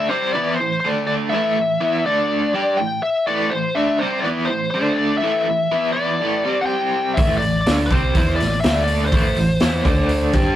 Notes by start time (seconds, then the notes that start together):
Already playing: E5
0.09 C3 G3 C4 C5
0.33 E3 B3 E4 D5
0.56 C5
0.60 A2 E3
0.80 C5
0.85 D3 A3 D4
1.07 D5
1.30 A2 E5
1.34 E3 A3
1.58 A2 E3
1.81 E3 B3 E4
2.06 D3 A3 D4 D5
2.54 G3 D4 G4
2.77 A2 E3 G5
3.03 E5
3.27 A2 E3 A3 D5
3.50 A2 E3 C5
3.75 D3 A3 D4 E5
3.99 C3 G3 C4 C5
4.20 E3 D5
4.25 B3 E4
4.45 C5
4.50 A2 E3
4.71 D3 C5
4.75 A3 D4
4.93 D5
5.18 E5
5.23 A2 E3 A3
5.47 A2 E3
5.72 E3 B3 E4
5.92 E3 D5
5.97 B3 E4
6.21 A2 E3 A3
6.44 C3 G3 C4
6.61 F#5
6.66 G5
7.14 A1 E5, kick, open hi-hat
7.18 A2 E3 A3
7.38 D5
7.42 A1 A2 E3, open hi-hat
7.61 D5
7.66 D2 D3 A3 D4, snare, open hi-hat
7.86 C5
7.91 C2 C3 G3 C4, kick, open hi-hat
8.15 E2 E3 B3 E4, kick, open hi-hat
8.36 D5
8.40 A1 A2 E3, snare, open hi-hat
8.61 D3 E5, snare, open hi-hat
8.65 D2 A3 D4
8.84 D5, open hi-hat
9.04 B4 C5
9.12 A1 A2 E3 A3, kick, open hi-hat
9.36 A1 A2 E3, open hi-hat
9.60 E2 E3 B3 E4, snare, open hi-hat
9.85 D2 D3 A3 D4, kick, open hi-hat
10.09 open hi-hat
10.33 G2 G3 D4 G4, kick, snare, open hi-hat